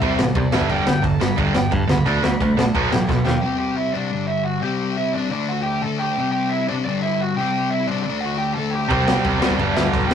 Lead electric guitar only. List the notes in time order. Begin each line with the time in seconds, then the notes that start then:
Already playing: E5
0.37 D5
0.52 E5
0.70 G5
1.05 A5
1.21 B5
1.56 G5
1.73 A5
1.91 B5
2.59 A5
2.77 B4
2.92 G4 A4 G5
3.09 A4 B4 A5
3.25 G4 G5
3.58 G4 G5
3.76 E4 E5
3.93 D4 D5
4.27 E4 E5
4.45 F#4 F#5
4.62 G4 G5
4.97 E4 E5
5.14 D4 D5
5.31 D4 D5
5.49 F#4 F#5
5.63 G4 G5
5.82 A4 A5
5.99 G4 G5
6.32 G4 G5
6.49 E4 E5
6.69 D4 D5
6.85 D4 D5
7.02 E4 E5
7.21 F#4 F#5
7.37 G4 G5
7.70 E5
7.75 E4
7.87 D4 D5
8.03 D5
8.07 D4
8.21 F#5
8.25 F#4
8.38 G4 G5
8.54 A5
8.59 A4
8.70 G4 G5
9.05 G4 G5
9.39 D4 D5
9.73 E5
9.78 E4
9.89 F#5
9.93 F#4
10.07 G4 G5